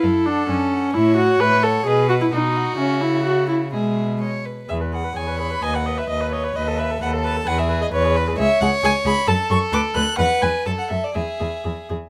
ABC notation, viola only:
X:1
M:2/4
L:1/16
Q:1/4=130
K:F#m
V:1 name="Viola"
E2 D2 C4 | [K:E] E2 F2 B2 A2 | G2 F E D4 | C2 E2 F2 E2 |
G,4 z4 | G B G B G B G B | d B d B d B d B | B A B A B A B A |
B G B G B G B G | [K:Emix] G2 G2 G2 G2 | A2 A2 B2 B2 | B2 B2 A2 A2 |
G2 G2 G2 G2 |]